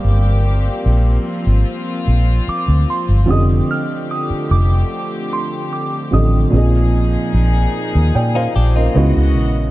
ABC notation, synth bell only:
X:1
M:4/4
L:1/8
Q:1/4=74
K:Gphr
V:1 name="Synth bell"
d'3 z3 d' c' | e' f' e' d'2 c' d' e'- | e'3 z4 z |]